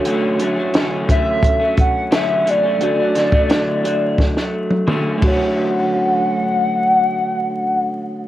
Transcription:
<<
  \new Staff \with { instrumentName = "Soft synth lead" } { \time 4/4 \key d \major \tempo 4 = 87 r4. e''4 fis''8 e''8 d''8~ | d''2. r8 fis''8~ | fis''1 | }
  \new Staff \with { instrumentName = "Tine electric piano" } { \time 4/4 \key d \major <a d' fis' cis''>2.~ <a d' fis' cis''>8 r8 | <a d' fis' a'>2.~ <a d' fis' a'>8 <a d' fis' cis''>8~ | <a d' fis' cis''>1 | }
  \new Staff \with { instrumentName = "Clean electric guitar" } { \time 4/4 \key d \major <d fis a cis'>8 <d fis a cis'>16 <fis a cis'>16 <d fis a cis'>8 <d fis a cis'>8. <fis a cis'>8. <d fis a cis'>8 <d fis a cis'>16 <fis a cis'>16 | <d fis a cis'>16 <fis a cis'>16 <d fis a cis'>16 <fis a cis'>16 <d fis a>8 <d fis a>8. <fis a>8. <d fis a cis'>8 <d fis a cis'>8~ | <d fis a cis'>1 | }
  \new DrumStaff \with { instrumentName = "Drums" } \drummode { \time 4/4 hh8 hh8 <hh sn>8 <hh bd>8 <hh bd>8 <hh bd>8 <hh sn>8 hh8 | hh8 <hh sn>16 bd16 <hh sn>8 hh8 <bd sn>16 sn8 tommh16 toml8 <bd cymr>8 | r4 r4 r4 r4 | }
>>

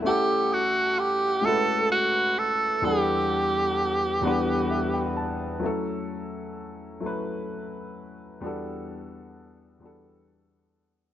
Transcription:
<<
  \new Staff \with { instrumentName = "Tenor saxophone" } { \time 6/8 \key fis \phrygian \tempo 4. = 43 g'8 fis'8 g'8 a'8 fis'8 a'8 | g'2~ g'8 r8 | r2. | r2. | }
  \new Staff \with { instrumentName = "Grand piano" } { \time 6/8 \key fis \phrygian << { r2. | r2 e''16 g''16 a''8 | r2. | r2. | } \\ { <a cis' e' a' fis''>4 r8 <gis a cis' e' fis' b'>4 r8 | <e, g b d' a' fis''>4 r8 <e, g b d' b' fis''>4 r8 | <fis a cis' e' a'>4 r8 <fis a cis' e' b'>4 r8 | <e, g b d' fis' a'>4 r8 <e, g b d' fis' a'>4 r8 | } >> }
>>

